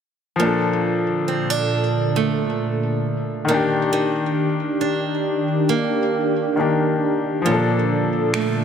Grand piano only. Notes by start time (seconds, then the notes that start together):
0.36 F3 A#3
0.42 D4 A4
3.45 D#3 A#3
3.51 D4 G4
6.56 D#3 A#3 D4
6.61 G4
7.42 F3 A#3
7.48 C#4 A4
7.55 D4